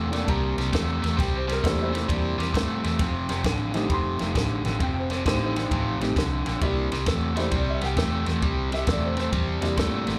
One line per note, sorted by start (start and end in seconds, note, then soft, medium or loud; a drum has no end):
0.00 0.23 E2 medium
0.11 0.26 C3 medium
0.11 0.70 G3 medium
0.11 0.27 A3 medium
0.11 0.70 A#3 medium
0.11 0.70 D4 medium
0.11 0.70 G4 medium
0.11 snare soft
0.11 ride medium
0.25 0.54 C2 medium
0.25 0.55 C3 medium
0.25 0.55 G3 loud
0.25 0.28 A5 medium
0.25 kick medium
0.25 ride medium
0.29 1.17 A#5 loud
0.57 0.71 C2 medium
0.57 0.71 C3 medium
0.57 0.72 G3 medium
0.57 snare soft
0.57 ride medium
0.72 1.00 E2 medium
0.72 1.00 C3 medium
0.72 1.00 A3 medium
0.72 kick medium
0.72 snare loud
0.72 ride medium
1.02 1.17 E2 loud
1.02 1.15 C3 medium
1.02 1.17 A3 medium
1.02 snare soft
1.02 ride medium
1.17 1.59 C2 medium
1.17 1.44 C3 medium
1.17 1.45 G3 medium
1.17 1.34 G5 medium
1.17 kick medium
1.17 ride medium
1.21 snare soft
1.36 1.50 C5 medium
1.47 1.61 C3 medium
1.47 1.62 G3 medium
1.47 snare soft
1.47 ride medium
1.52 1.65 A#4 medium
1.62 2.04 E2 medium
1.62 1.90 C3 medium
1.62 1.90 G3 medium
1.62 1.90 A3 medium
1.62 1.91 A#3 medium
1.62 1.90 D4 medium
1.62 1.81 E4 medium
1.62 kick medium
1.62 snare loud
1.62 ride medium
1.67 1.80 C5 medium
1.82 3.13 E4 medium
1.82 3.13 C5 medium
1.92 2.07 C3 medium
1.92 2.07 A3 medium
1.92 ride medium
1.97 snare soft
2.08 2.36 E2 medium
2.08 2.36 C3 medium
2.08 2.35 G3 medium
2.08 2.36 G3 medium
2.08 2.36 A#3 medium
2.08 2.36 D4 medium
2.08 2.36 G4 medium
2.08 kick medium
2.08 ride medium
2.38 2.52 E2 medium
2.38 2.53 C3 medium
2.38 2.53 G3 medium
2.38 ride medium
2.42 snare soft
2.54 2.81 G2 medium
2.54 2.81 C3 medium
2.54 2.81 A3 medium
2.54 kick medium
2.54 snare loud
2.54 ride medium
2.84 2.98 E2 loud
2.84 2.98 C3 medium
2.84 2.99 A3 medium
2.84 snare soft
2.84 ride medium
2.99 3.26 F1 medium
2.99 3.27 F2 medium
2.99 3.27 C3 loud
2.99 kick medium
2.99 snare soft
2.99 ride medium
3.29 3.43 F1 medium
3.29 3.43 F2 medium
3.29 3.44 C3 medium
3.29 snare soft
3.29 ride medium
3.44 3.85 A1 medium
3.44 3.72 F2 medium
3.44 3.72 D3 medium
3.44 kick medium
3.44 snare loud
3.44 ride medium
3.74 3.88 F2 medium
3.74 3.89 D3 medium
3.74 4.17 G3 medium
3.74 4.17 A3 medium
3.74 4.17 C4 medium
3.74 4.17 D#4 medium
3.74 snare soft
3.74 ride medium
3.89 4.17 F1 medium
3.89 4.17 F2 medium
3.89 4.17 C3 medium
3.89 3.92 B5 medium
3.89 kick medium
3.89 ride medium
3.94 4.80 C6 loud
4.19 4.34 F1 medium
4.19 4.34 F2 medium
4.19 4.35 C3 medium
4.19 4.77 G3 medium
4.19 4.77 A3 medium
4.19 4.77 C4 medium
4.19 4.78 D#4 medium
4.19 snare soft
4.19 ride medium
4.35 4.62 A1 medium
4.35 4.63 F2 medium
4.35 4.63 D3 loud
4.35 kick medium
4.35 snare medium
4.35 ride medium
4.65 4.79 A1 loud
4.65 4.80 F2 medium
4.65 4.80 D3 medium
4.65 snare soft
4.65 ride soft
4.80 5.21 F1 medium
4.80 5.08 F2 medium
4.80 5.08 C3 loud
4.80 4.97 G5 medium
4.80 kick medium
4.80 ride medium
4.99 5.12 C5 medium
5.10 5.25 F2 medium
5.10 5.25 C3 medium
5.10 snare soft
5.10 ride medium
5.14 5.27 C5 medium
5.25 5.66 A1 medium
5.25 5.53 F2 medium
5.25 5.53 D3 medium
5.25 5.52 G3 medium
5.25 5.53 A3 medium
5.25 5.53 C4 medium
5.25 5.42 D#4 medium
5.25 5.42 C5 medium
5.25 kick medium
5.25 snare loud
5.25 ride medium
5.43 6.00 D#4 medium
5.43 6.74 C5 medium
5.56 5.70 F2 medium
5.56 5.70 D3 medium
5.56 snare soft
5.56 ride medium
5.71 5.98 A1 loud
5.71 5.98 F2 medium
5.71 5.98 C3 medium
5.71 kick medium
5.71 ride medium
6.01 6.15 A1 medium
6.01 6.15 F2 medium
6.01 6.15 C3 medium
6.01 6.15 G3 medium
6.01 6.15 A3 medium
6.01 6.16 C4 medium
6.01 6.16 D#4 medium
6.01 snare soft
6.01 ride medium
6.16 6.43 C2 medium
6.16 6.44 F2 medium
6.16 6.44 D3 loud
6.16 kick medium
6.16 snare loud
6.16 ride medium
6.46 6.61 A#1 loud
6.46 6.60 F2 medium
6.46 6.61 D3 medium
6.46 snare soft
6.46 ride medium
6.61 6.88 C2 medium
6.61 6.89 C3 medium
6.61 6.89 G3 medium
6.61 6.89 G3 loud
6.61 6.88 A#3 medium
6.61 6.89 D4 medium
6.61 6.89 E4 medium
6.61 kick medium
6.61 ride medium
6.92 7.06 C2 medium
6.92 7.05 C3 medium
6.92 7.06 G3 medium
6.92 snare soft
6.92 ride medium
7.06 7.47 E2 medium
7.06 7.33 C3 medium
7.06 7.34 A3 medium
7.06 kick medium
7.06 snare loud
7.06 ride medium
7.35 7.50 C3 medium
7.35 7.51 G3 medium
7.35 7.51 A3 medium
7.35 7.51 A#3 medium
7.35 7.51 D4 medium
7.35 7.51 E4 medium
7.35 snare soft
7.35 ride medium
7.40 7.53 C5 medium
7.51 7.79 C2 medium
7.51 7.78 C3 medium
7.51 7.79 G3 medium
7.51 kick medium
7.51 ride medium
7.56 7.69 D5 medium
7.70 7.83 E5 medium
7.80 7.96 C2 medium
7.80 7.95 C3 medium
7.80 7.96 G3 medium
7.80 7.84 F#5 medium
7.80 snare soft
7.80 ride medium
7.85 8.72 G5 loud
7.96 8.24 E2 medium
7.96 8.24 C3 medium
7.96 8.24 A3 loud
7.96 kick medium
7.96 snare loud
7.96 ride medium
8.26 8.41 E2 loud
8.26 8.41 C3 medium
8.26 8.41 A3 medium
8.26 snare soft
8.26 ride medium
8.42 8.82 C2 medium
8.42 8.69 C3 medium
8.42 8.70 G3 loud
8.42 kick medium
8.42 ride medium
8.72 8.86 C3 medium
8.72 8.86 G3 medium
8.72 8.88 E5 medium
8.72 snare soft
8.72 ride medium
8.87 9.28 E2 medium
8.87 9.14 C3 medium
8.87 9.15 A3 medium
8.87 9.04 D5 medium
8.87 kick medium
8.87 snare loud
8.87 ride medium
9.05 9.18 C5 medium
9.17 9.31 C3 medium
9.17 9.32 A3 medium
9.17 10.19 C5 medium
9.17 snare soft
9.17 ride soft
9.32 9.59 E2 medium
9.32 9.60 C3 medium
9.32 9.60 G3 loud
9.32 kick loud
9.32 ride medium
9.61 9.76 E2 medium
9.61 9.76 C3 medium
9.61 10.19 G3 medium
9.61 9.76 G3 medium
9.61 10.19 A#3 medium
9.61 10.19 D4 medium
9.61 10.19 E4 medium
9.61 snare soft
9.61 ride medium
9.77 10.05 G2 medium
9.77 10.04 C3 medium
9.77 10.05 A3 medium
9.77 kick medium
9.77 snare loud
9.77 ride medium
10.07 10.19 A1 loud
10.07 10.19 C3 medium
10.07 10.19 A3 medium
10.07 snare soft
10.07 ride medium